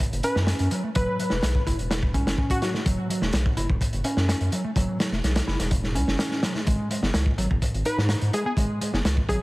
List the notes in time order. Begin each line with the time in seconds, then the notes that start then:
0.00 kick, closed hi-hat
0.12 F#1, closed hi-hat
0.23 C#4 B4, closed hi-hat
0.36 F#2, snare
0.47 C#4, snare, closed hi-hat
0.59 F#2, closed hi-hat
0.71 F#3, closed hi-hat
0.84 A3
0.95 F#1 F#3 B4, kick, closed hi-hat
1.19 F#3, closed hi-hat
1.30 E1 A3, snare
1.43 B1, snare, closed hi-hat
1.55 kick
1.67 F#1 E4, kick, closed hi-hat
1.79 E1, closed hi-hat
1.91 snare, closed hi-hat
2.03 kick
2.14 C#2 C#4, kick, closed hi-hat
2.27 F#1, snare, closed hi-hat
2.38 C#4, kick
2.50 F#4, kick, closed hi-hat
2.62 F#3 F#4, snare, closed hi-hat
2.74 A3, snare
2.86 F#1 F#3, kick, closed hi-hat
3.10 F#3, closed hi-hat
3.22 E1 A3, snare
3.33 B1, snare, closed hi-hat
3.46 kick
3.57 F#1 E4, closed hi-hat
3.70 E1, kick
3.81 F#1, kick, closed hi-hat
3.93 F#1, closed hi-hat
4.04 C#4, closed hi-hat
4.17 F#2, snare
4.28 C#4, snare, closed hi-hat
4.41 F#2, closed hi-hat
4.52 F#3, closed hi-hat
4.64 A3
4.76 F#1 F#3, kick, closed hi-hat
5.00 F#3, snare, closed hi-hat
5.12 E1 A3, snare
5.24 B1, snare, closed hi-hat
5.36 snare, closed hi-hat
5.48 F#1 E4, snare
5.60 E1, snare, closed hi-hat
5.71 kick, closed hi-hat
5.84 snare
5.95 C#2 C#4, closed hi-hat
6.07 F#1, snare
6.19 C#4, snare, closed hi-hat
6.31 snare
6.43 F#3, snare, closed hi-hat
6.55 A3, snare
6.66 G#1 G#3, kick, closed hi-hat
6.90 G#3, closed hi-hat
7.03 F#1 B3, snare
7.14 C#2, snare, closed hi-hat
7.26 kick
7.38 G#1 F#3, closed hi-hat
7.51 F#1, kick
7.62 G#1, kick, closed hi-hat
7.74 G#1, closed hi-hat
7.85 D#4 B4, closed hi-hat
7.98 G#2, snare
8.09 D#4, snare, closed hi-hat
8.21 G#2, closed hi-hat
8.33 G#3 G#4, closed hi-hat
8.46 B3 G#4
8.57 G#1 G#3, kick, closed hi-hat
8.81 G#3, closed hi-hat
8.93 F#1 B3, snare
9.05 C#2, snare, closed hi-hat
9.17 kick
9.29 G#1 F#3 G#4, kick, closed hi-hat